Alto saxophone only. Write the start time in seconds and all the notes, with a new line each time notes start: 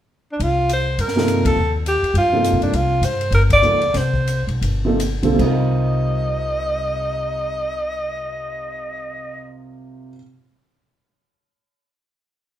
0.32 D4
0.43 F4
0.73 C5
1.01 A#4
1.46 A4
1.88 G4
2.18 F4
2.63 D4
2.75 F4
3.05 C5
3.35 A#4
3.53 D5
3.97 C5
5.42 D#5